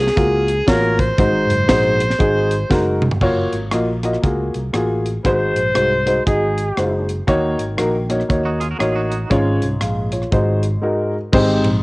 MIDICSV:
0, 0, Header, 1, 7, 480
1, 0, Start_track
1, 0, Tempo, 507614
1, 1116, Time_signature, 4, 2, 24, 8
1, 11186, End_track
2, 0, Start_track
2, 0, Title_t, "Harmonica"
2, 0, Program_c, 0, 22
2, 0, Note_on_c, 0, 68, 85
2, 648, Note_on_c, 0, 70, 88
2, 662, Note_off_c, 0, 68, 0
2, 937, Note_on_c, 0, 72, 104
2, 951, Note_off_c, 0, 70, 0
2, 2856, Note_off_c, 0, 72, 0
2, 11186, End_track
3, 0, Start_track
3, 0, Title_t, "Trumpet"
3, 0, Program_c, 1, 56
3, 4960, Note_on_c, 1, 72, 111
3, 5885, Note_off_c, 1, 72, 0
3, 5921, Note_on_c, 1, 68, 85
3, 6661, Note_off_c, 1, 68, 0
3, 11186, End_track
4, 0, Start_track
4, 0, Title_t, "Clean electric guitar"
4, 0, Program_c, 2, 27
4, 7993, Note_on_c, 2, 66, 60
4, 7999, Note_on_c, 2, 63, 53
4, 8133, Note_off_c, 2, 66, 0
4, 8135, Note_on_c, 2, 68, 74
4, 8137, Note_off_c, 2, 63, 0
4, 8142, Note_on_c, 2, 65, 60
4, 8225, Note_off_c, 2, 68, 0
4, 8229, Note_off_c, 2, 65, 0
4, 8234, Note_on_c, 2, 70, 73
4, 8239, Note_on_c, 2, 66, 68
4, 8312, Note_off_c, 2, 70, 0
4, 8316, Note_on_c, 2, 68, 57
4, 8318, Note_off_c, 2, 66, 0
4, 8321, Note_on_c, 2, 65, 61
4, 8461, Note_off_c, 2, 68, 0
4, 8463, Note_off_c, 2, 65, 0
4, 8467, Note_on_c, 2, 66, 61
4, 8471, Note_on_c, 2, 63, 53
4, 8785, Note_off_c, 2, 66, 0
4, 8787, Note_off_c, 2, 63, 0
4, 11186, End_track
5, 0, Start_track
5, 0, Title_t, "Grand piano"
5, 0, Program_c, 3, 0
5, 149, Note_on_c, 3, 58, 67
5, 154, Note_on_c, 3, 65, 64
5, 158, Note_on_c, 3, 66, 70
5, 164, Note_on_c, 3, 70, 72
5, 453, Note_off_c, 3, 58, 0
5, 455, Note_off_c, 3, 65, 0
5, 457, Note_off_c, 3, 66, 0
5, 460, Note_off_c, 3, 70, 0
5, 629, Note_on_c, 3, 58, 73
5, 635, Note_on_c, 3, 65, 68
5, 637, Note_on_c, 3, 66, 64
5, 644, Note_on_c, 3, 73, 79
5, 933, Note_off_c, 3, 58, 0
5, 936, Note_off_c, 3, 65, 0
5, 937, Note_off_c, 3, 66, 0
5, 940, Note_off_c, 3, 73, 0
5, 1113, Note_on_c, 3, 56, 81
5, 1121, Note_on_c, 3, 63, 74
5, 1124, Note_on_c, 3, 44, 68
5, 1126, Note_on_c, 3, 66, 72
5, 1128, Note_on_c, 3, 72, 94
5, 1415, Note_off_c, 3, 56, 0
5, 1419, Note_off_c, 3, 63, 0
5, 1421, Note_off_c, 3, 66, 0
5, 1423, Note_off_c, 3, 72, 0
5, 1586, Note_on_c, 3, 56, 84
5, 1591, Note_on_c, 3, 63, 77
5, 1599, Note_on_c, 3, 66, 80
5, 1601, Note_on_c, 3, 72, 102
5, 1858, Note_off_c, 3, 44, 0
5, 1892, Note_off_c, 3, 56, 0
5, 1894, Note_off_c, 3, 63, 0
5, 1898, Note_off_c, 3, 66, 0
5, 1899, Note_off_c, 3, 72, 0
5, 2068, Note_on_c, 3, 56, 86
5, 2073, Note_on_c, 3, 63, 73
5, 2080, Note_on_c, 3, 66, 78
5, 2085, Note_on_c, 3, 68, 91
5, 2373, Note_off_c, 3, 56, 0
5, 2376, Note_off_c, 3, 63, 0
5, 2379, Note_off_c, 3, 66, 0
5, 2382, Note_off_c, 3, 68, 0
5, 2551, Note_on_c, 3, 56, 80
5, 2557, Note_on_c, 3, 63, 81
5, 2559, Note_on_c, 3, 66, 85
5, 2564, Note_on_c, 3, 70, 89
5, 2855, Note_off_c, 3, 56, 0
5, 2858, Note_off_c, 3, 63, 0
5, 2859, Note_off_c, 3, 66, 0
5, 2862, Note_off_c, 3, 70, 0
5, 3040, Note_on_c, 3, 58, 97
5, 3042, Note_on_c, 3, 65, 104
5, 3047, Note_on_c, 3, 66, 94
5, 3053, Note_on_c, 3, 73, 113
5, 3340, Note_off_c, 3, 58, 0
5, 3341, Note_off_c, 3, 65, 0
5, 3344, Note_off_c, 3, 66, 0
5, 3346, Note_off_c, 3, 73, 0
5, 3517, Note_on_c, 3, 58, 84
5, 3518, Note_on_c, 3, 65, 75
5, 3525, Note_on_c, 3, 66, 66
5, 3530, Note_on_c, 3, 75, 83
5, 3670, Note_off_c, 3, 58, 0
5, 3671, Note_off_c, 3, 65, 0
5, 3674, Note_off_c, 3, 66, 0
5, 3676, Note_off_c, 3, 75, 0
5, 3812, Note_on_c, 3, 58, 73
5, 3819, Note_on_c, 3, 65, 60
5, 3823, Note_on_c, 3, 66, 69
5, 3829, Note_on_c, 3, 75, 80
5, 3909, Note_off_c, 3, 58, 0
5, 3912, Note_off_c, 3, 65, 0
5, 3914, Note_off_c, 3, 66, 0
5, 3917, Note_off_c, 3, 75, 0
5, 3994, Note_on_c, 3, 58, 74
5, 4000, Note_on_c, 3, 65, 63
5, 4005, Note_on_c, 3, 66, 68
5, 4009, Note_on_c, 3, 68, 77
5, 4298, Note_off_c, 3, 58, 0
5, 4301, Note_off_c, 3, 65, 0
5, 4304, Note_off_c, 3, 66, 0
5, 4306, Note_off_c, 3, 68, 0
5, 4473, Note_on_c, 3, 58, 70
5, 4474, Note_on_c, 3, 65, 73
5, 4482, Note_on_c, 3, 66, 68
5, 4487, Note_on_c, 3, 68, 84
5, 4778, Note_off_c, 3, 58, 0
5, 4779, Note_off_c, 3, 65, 0
5, 4783, Note_off_c, 3, 66, 0
5, 4785, Note_off_c, 3, 68, 0
5, 4957, Note_on_c, 3, 56, 88
5, 4961, Note_on_c, 3, 63, 74
5, 4965, Note_on_c, 3, 44, 57
5, 4968, Note_on_c, 3, 66, 87
5, 4975, Note_on_c, 3, 72, 103
5, 5261, Note_off_c, 3, 56, 0
5, 5263, Note_off_c, 3, 63, 0
5, 5266, Note_off_c, 3, 66, 0
5, 5270, Note_off_c, 3, 72, 0
5, 5429, Note_on_c, 3, 56, 66
5, 5437, Note_on_c, 3, 63, 53
5, 5441, Note_on_c, 3, 66, 56
5, 5447, Note_on_c, 3, 72, 72
5, 5588, Note_off_c, 3, 56, 0
5, 5592, Note_off_c, 3, 63, 0
5, 5594, Note_off_c, 3, 66, 0
5, 5597, Note_off_c, 3, 72, 0
5, 5703, Note_off_c, 3, 44, 0
5, 5728, Note_on_c, 3, 56, 69
5, 5735, Note_on_c, 3, 63, 67
5, 5739, Note_on_c, 3, 66, 65
5, 5743, Note_on_c, 3, 72, 84
5, 5829, Note_off_c, 3, 56, 0
5, 5832, Note_off_c, 3, 63, 0
5, 5834, Note_off_c, 3, 66, 0
5, 5836, Note_off_c, 3, 72, 0
5, 5918, Note_on_c, 3, 56, 59
5, 5921, Note_on_c, 3, 63, 58
5, 5926, Note_on_c, 3, 66, 62
5, 5934, Note_on_c, 3, 75, 70
5, 6222, Note_off_c, 3, 56, 0
5, 6224, Note_off_c, 3, 63, 0
5, 6226, Note_off_c, 3, 66, 0
5, 6230, Note_off_c, 3, 75, 0
5, 6400, Note_on_c, 3, 56, 66
5, 6403, Note_on_c, 3, 63, 55
5, 6408, Note_on_c, 3, 66, 59
5, 6415, Note_on_c, 3, 72, 76
5, 6703, Note_off_c, 3, 56, 0
5, 6705, Note_off_c, 3, 63, 0
5, 6707, Note_off_c, 3, 66, 0
5, 6711, Note_off_c, 3, 72, 0
5, 6877, Note_on_c, 3, 58, 101
5, 6883, Note_on_c, 3, 63, 99
5, 6885, Note_on_c, 3, 51, 73
5, 6887, Note_on_c, 3, 66, 90
5, 6892, Note_on_c, 3, 73, 116
5, 7182, Note_off_c, 3, 58, 0
5, 7185, Note_off_c, 3, 63, 0
5, 7187, Note_off_c, 3, 66, 0
5, 7189, Note_off_c, 3, 73, 0
5, 7350, Note_on_c, 3, 58, 79
5, 7356, Note_on_c, 3, 63, 72
5, 7360, Note_on_c, 3, 66, 67
5, 7365, Note_on_c, 3, 70, 95
5, 7509, Note_off_c, 3, 58, 0
5, 7513, Note_off_c, 3, 63, 0
5, 7514, Note_off_c, 3, 66, 0
5, 7517, Note_off_c, 3, 70, 0
5, 7623, Note_off_c, 3, 51, 0
5, 7653, Note_on_c, 3, 58, 72
5, 7655, Note_on_c, 3, 63, 68
5, 7661, Note_on_c, 3, 66, 60
5, 7667, Note_on_c, 3, 73, 81
5, 7752, Note_off_c, 3, 58, 0
5, 7753, Note_off_c, 3, 63, 0
5, 7756, Note_off_c, 3, 66, 0
5, 7758, Note_off_c, 3, 73, 0
5, 7836, Note_on_c, 3, 58, 68
5, 7838, Note_on_c, 3, 63, 67
5, 7844, Note_on_c, 3, 66, 63
5, 7849, Note_on_c, 3, 73, 84
5, 8141, Note_off_c, 3, 58, 0
5, 8142, Note_off_c, 3, 63, 0
5, 8145, Note_off_c, 3, 66, 0
5, 8147, Note_off_c, 3, 73, 0
5, 8307, Note_on_c, 3, 58, 75
5, 8312, Note_on_c, 3, 63, 67
5, 8319, Note_on_c, 3, 66, 75
5, 8324, Note_on_c, 3, 73, 87
5, 8616, Note_off_c, 3, 58, 0
5, 8618, Note_off_c, 3, 63, 0
5, 8622, Note_off_c, 3, 66, 0
5, 8624, Note_off_c, 3, 73, 0
5, 8794, Note_on_c, 3, 56, 108
5, 8798, Note_on_c, 3, 61, 98
5, 8802, Note_on_c, 3, 44, 71
5, 8806, Note_on_c, 3, 65, 92
5, 8809, Note_on_c, 3, 73, 109
5, 9099, Note_off_c, 3, 56, 0
5, 9101, Note_off_c, 3, 61, 0
5, 9105, Note_off_c, 3, 65, 0
5, 9106, Note_off_c, 3, 73, 0
5, 9281, Note_on_c, 3, 77, 62
5, 9286, Note_on_c, 3, 68, 50
5, 9539, Note_off_c, 3, 44, 0
5, 9562, Note_off_c, 3, 77, 0
5, 9565, Note_off_c, 3, 68, 0
5, 9575, Note_on_c, 3, 73, 57
5, 9579, Note_on_c, 3, 65, 45
5, 9754, Note_on_c, 3, 56, 76
5, 9759, Note_on_c, 3, 63, 69
5, 9764, Note_on_c, 3, 44, 59
5, 9765, Note_on_c, 3, 66, 67
5, 9769, Note_on_c, 3, 72, 81
5, 10030, Note_off_c, 3, 73, 0
5, 10033, Note_off_c, 3, 65, 0
5, 10056, Note_off_c, 3, 56, 0
5, 10059, Note_off_c, 3, 63, 0
5, 10062, Note_off_c, 3, 66, 0
5, 10064, Note_off_c, 3, 72, 0
5, 10227, Note_on_c, 3, 56, 74
5, 10233, Note_on_c, 3, 63, 70
5, 10240, Note_on_c, 3, 66, 67
5, 10244, Note_on_c, 3, 70, 79
5, 10496, Note_off_c, 3, 44, 0
5, 10532, Note_off_c, 3, 56, 0
5, 10534, Note_off_c, 3, 63, 0
5, 10538, Note_off_c, 3, 66, 0
5, 10540, Note_off_c, 3, 70, 0
5, 10708, Note_on_c, 3, 56, 97
5, 10712, Note_on_c, 3, 60, 92
5, 10716, Note_on_c, 3, 63, 91
5, 10718, Note_on_c, 3, 44, 88
5, 10724, Note_on_c, 3, 67, 85
5, 10725, Note_on_c, 3, 72, 114
5, 11010, Note_off_c, 3, 56, 0
5, 11012, Note_off_c, 3, 60, 0
5, 11014, Note_off_c, 3, 63, 0
5, 11018, Note_off_c, 3, 67, 0
5, 11019, Note_off_c, 3, 72, 0
5, 11186, Note_off_c, 3, 44, 0
5, 11186, End_track
6, 0, Start_track
6, 0, Title_t, "Fingered electric bass"
6, 0, Program_c, 4, 33
6, 158, Note_on_c, 4, 37, 89
6, 565, Note_off_c, 4, 37, 0
6, 640, Note_on_c, 4, 33, 88
6, 1046, Note_off_c, 4, 33, 0
6, 1119, Note_on_c, 4, 32, 101
6, 1369, Note_off_c, 4, 32, 0
6, 1412, Note_on_c, 4, 30, 83
6, 1569, Note_off_c, 4, 30, 0
6, 1602, Note_on_c, 4, 34, 91
6, 2008, Note_off_c, 4, 34, 0
6, 2081, Note_on_c, 4, 32, 101
6, 2488, Note_off_c, 4, 32, 0
6, 2560, Note_on_c, 4, 30, 88
6, 2968, Note_off_c, 4, 30, 0
6, 3039, Note_on_c, 4, 30, 87
6, 3291, Note_off_c, 4, 30, 0
6, 3338, Note_on_c, 4, 32, 66
6, 3494, Note_off_c, 4, 32, 0
6, 3524, Note_on_c, 4, 34, 73
6, 3931, Note_off_c, 4, 34, 0
6, 4005, Note_on_c, 4, 37, 77
6, 4255, Note_off_c, 4, 37, 0
6, 4303, Note_on_c, 4, 36, 66
6, 4457, Note_off_c, 4, 36, 0
6, 4481, Note_on_c, 4, 33, 77
6, 4890, Note_off_c, 4, 33, 0
6, 4961, Note_on_c, 4, 32, 92
6, 5214, Note_off_c, 4, 32, 0
6, 5258, Note_on_c, 4, 34, 71
6, 5415, Note_off_c, 4, 34, 0
6, 5443, Note_on_c, 4, 36, 69
6, 5852, Note_off_c, 4, 36, 0
6, 5929, Note_on_c, 4, 32, 81
6, 6336, Note_off_c, 4, 32, 0
6, 6403, Note_on_c, 4, 30, 78
6, 6812, Note_off_c, 4, 30, 0
6, 6885, Note_on_c, 4, 39, 94
6, 7137, Note_off_c, 4, 39, 0
6, 7177, Note_on_c, 4, 32, 80
6, 7335, Note_off_c, 4, 32, 0
6, 7364, Note_on_c, 4, 34, 72
6, 7773, Note_off_c, 4, 34, 0
6, 7848, Note_on_c, 4, 39, 75
6, 8255, Note_off_c, 4, 39, 0
6, 8327, Note_on_c, 4, 33, 75
6, 8734, Note_off_c, 4, 33, 0
6, 8801, Note_on_c, 4, 32, 94
6, 9053, Note_off_c, 4, 32, 0
6, 9100, Note_on_c, 4, 36, 71
6, 9256, Note_off_c, 4, 36, 0
6, 9286, Note_on_c, 4, 34, 80
6, 9691, Note_off_c, 4, 34, 0
6, 9762, Note_on_c, 4, 32, 88
6, 10168, Note_off_c, 4, 32, 0
6, 10714, Note_on_c, 4, 32, 106
6, 10964, Note_off_c, 4, 32, 0
6, 11011, Note_on_c, 4, 34, 90
6, 11166, Note_off_c, 4, 34, 0
6, 11186, End_track
7, 0, Start_track
7, 0, Title_t, "Drums"
7, 64, Note_on_c, 9, 38, 36
7, 159, Note_off_c, 9, 38, 0
7, 160, Note_on_c, 9, 36, 105
7, 162, Note_on_c, 9, 42, 79
7, 255, Note_off_c, 9, 36, 0
7, 257, Note_off_c, 9, 42, 0
7, 454, Note_on_c, 9, 42, 66
7, 549, Note_off_c, 9, 42, 0
7, 639, Note_on_c, 9, 36, 94
7, 640, Note_on_c, 9, 38, 101
7, 643, Note_on_c, 9, 42, 84
7, 734, Note_off_c, 9, 36, 0
7, 735, Note_off_c, 9, 38, 0
7, 738, Note_off_c, 9, 42, 0
7, 936, Note_on_c, 9, 36, 86
7, 940, Note_on_c, 9, 42, 66
7, 1031, Note_off_c, 9, 36, 0
7, 1034, Note_off_c, 9, 42, 0
7, 1119, Note_on_c, 9, 36, 102
7, 1121, Note_on_c, 9, 42, 84
7, 1213, Note_off_c, 9, 36, 0
7, 1216, Note_off_c, 9, 42, 0
7, 1418, Note_on_c, 9, 42, 71
7, 1513, Note_off_c, 9, 42, 0
7, 1596, Note_on_c, 9, 38, 108
7, 1599, Note_on_c, 9, 42, 106
7, 1601, Note_on_c, 9, 36, 81
7, 1691, Note_off_c, 9, 38, 0
7, 1694, Note_off_c, 9, 42, 0
7, 1696, Note_off_c, 9, 36, 0
7, 1895, Note_on_c, 9, 42, 81
7, 1990, Note_off_c, 9, 42, 0
7, 1990, Note_on_c, 9, 38, 35
7, 2082, Note_on_c, 9, 36, 112
7, 2084, Note_off_c, 9, 38, 0
7, 2086, Note_on_c, 9, 42, 86
7, 2177, Note_off_c, 9, 36, 0
7, 2181, Note_off_c, 9, 42, 0
7, 2376, Note_on_c, 9, 42, 68
7, 2470, Note_off_c, 9, 42, 0
7, 2561, Note_on_c, 9, 36, 93
7, 2562, Note_on_c, 9, 38, 57
7, 2656, Note_off_c, 9, 36, 0
7, 2657, Note_off_c, 9, 38, 0
7, 2856, Note_on_c, 9, 45, 88
7, 2945, Note_on_c, 9, 43, 87
7, 2951, Note_off_c, 9, 45, 0
7, 3039, Note_on_c, 9, 36, 93
7, 3039, Note_on_c, 9, 49, 73
7, 3040, Note_off_c, 9, 43, 0
7, 3133, Note_off_c, 9, 36, 0
7, 3133, Note_off_c, 9, 49, 0
7, 3335, Note_on_c, 9, 42, 55
7, 3430, Note_off_c, 9, 42, 0
7, 3513, Note_on_c, 9, 37, 99
7, 3516, Note_on_c, 9, 42, 95
7, 3607, Note_off_c, 9, 37, 0
7, 3610, Note_off_c, 9, 42, 0
7, 3812, Note_on_c, 9, 42, 80
7, 3814, Note_on_c, 9, 37, 33
7, 3907, Note_off_c, 9, 42, 0
7, 3909, Note_off_c, 9, 37, 0
7, 3909, Note_on_c, 9, 37, 31
7, 4003, Note_off_c, 9, 37, 0
7, 4004, Note_on_c, 9, 36, 102
7, 4007, Note_on_c, 9, 42, 74
7, 4099, Note_off_c, 9, 36, 0
7, 4102, Note_off_c, 9, 42, 0
7, 4295, Note_on_c, 9, 42, 58
7, 4389, Note_off_c, 9, 42, 0
7, 4478, Note_on_c, 9, 37, 78
7, 4481, Note_on_c, 9, 42, 71
7, 4573, Note_off_c, 9, 37, 0
7, 4576, Note_off_c, 9, 42, 0
7, 4782, Note_on_c, 9, 42, 53
7, 4876, Note_off_c, 9, 42, 0
7, 4962, Note_on_c, 9, 36, 82
7, 4965, Note_on_c, 9, 42, 86
7, 5057, Note_off_c, 9, 36, 0
7, 5060, Note_off_c, 9, 42, 0
7, 5258, Note_on_c, 9, 42, 61
7, 5353, Note_off_c, 9, 42, 0
7, 5439, Note_on_c, 9, 37, 109
7, 5442, Note_on_c, 9, 42, 87
7, 5534, Note_off_c, 9, 37, 0
7, 5537, Note_off_c, 9, 42, 0
7, 5738, Note_on_c, 9, 42, 73
7, 5832, Note_off_c, 9, 42, 0
7, 5927, Note_on_c, 9, 36, 98
7, 5930, Note_on_c, 9, 42, 79
7, 6022, Note_off_c, 9, 36, 0
7, 6024, Note_off_c, 9, 42, 0
7, 6219, Note_on_c, 9, 42, 57
7, 6314, Note_off_c, 9, 42, 0
7, 6404, Note_on_c, 9, 37, 77
7, 6407, Note_on_c, 9, 42, 65
7, 6498, Note_off_c, 9, 37, 0
7, 6502, Note_off_c, 9, 42, 0
7, 6704, Note_on_c, 9, 42, 55
7, 6798, Note_off_c, 9, 42, 0
7, 6884, Note_on_c, 9, 36, 86
7, 6886, Note_on_c, 9, 42, 78
7, 6978, Note_off_c, 9, 36, 0
7, 6981, Note_off_c, 9, 42, 0
7, 7180, Note_on_c, 9, 42, 62
7, 7275, Note_off_c, 9, 42, 0
7, 7358, Note_on_c, 9, 37, 90
7, 7361, Note_on_c, 9, 42, 89
7, 7453, Note_off_c, 9, 37, 0
7, 7456, Note_off_c, 9, 42, 0
7, 7657, Note_on_c, 9, 42, 77
7, 7659, Note_on_c, 9, 37, 32
7, 7752, Note_off_c, 9, 37, 0
7, 7752, Note_off_c, 9, 42, 0
7, 7752, Note_on_c, 9, 37, 30
7, 7847, Note_off_c, 9, 37, 0
7, 7848, Note_on_c, 9, 36, 96
7, 7852, Note_on_c, 9, 42, 73
7, 7942, Note_off_c, 9, 36, 0
7, 7946, Note_off_c, 9, 42, 0
7, 8141, Note_on_c, 9, 42, 62
7, 8236, Note_off_c, 9, 42, 0
7, 8325, Note_on_c, 9, 37, 94
7, 8328, Note_on_c, 9, 42, 72
7, 8419, Note_off_c, 9, 37, 0
7, 8423, Note_off_c, 9, 42, 0
7, 8621, Note_on_c, 9, 42, 55
7, 8715, Note_off_c, 9, 42, 0
7, 8802, Note_on_c, 9, 36, 90
7, 8805, Note_on_c, 9, 42, 76
7, 8897, Note_off_c, 9, 36, 0
7, 8899, Note_off_c, 9, 42, 0
7, 9097, Note_on_c, 9, 42, 60
7, 9192, Note_off_c, 9, 42, 0
7, 9276, Note_on_c, 9, 37, 86
7, 9279, Note_on_c, 9, 42, 92
7, 9371, Note_off_c, 9, 37, 0
7, 9374, Note_off_c, 9, 42, 0
7, 9570, Note_on_c, 9, 42, 73
7, 9664, Note_off_c, 9, 42, 0
7, 9664, Note_on_c, 9, 37, 28
7, 9759, Note_off_c, 9, 37, 0
7, 9762, Note_on_c, 9, 36, 98
7, 9763, Note_on_c, 9, 42, 68
7, 9857, Note_off_c, 9, 36, 0
7, 9857, Note_off_c, 9, 42, 0
7, 10052, Note_on_c, 9, 42, 57
7, 10146, Note_off_c, 9, 42, 0
7, 10715, Note_on_c, 9, 36, 108
7, 10715, Note_on_c, 9, 49, 104
7, 10809, Note_off_c, 9, 36, 0
7, 10809, Note_off_c, 9, 49, 0
7, 11009, Note_on_c, 9, 51, 57
7, 11104, Note_off_c, 9, 51, 0
7, 11186, End_track
0, 0, End_of_file